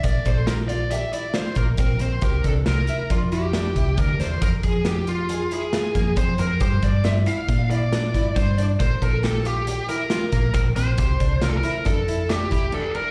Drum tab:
HH |xxxxxxxxxx|xxxxxxxxxx|xxxxxxxxxx|xxxxxxxxxx|
SD |--o---o---|--o---o--o|--o---o---|--o---ooo-|
BD |oo-----oo-|oo--o--oo-|oo-----oo-|oo--o--oo-|

HH |xxxxxxxxxx|xxxxxxxx--|
SD |--o---oo--|--o---o---|
BD |oo-----oo-|oo--o--o--|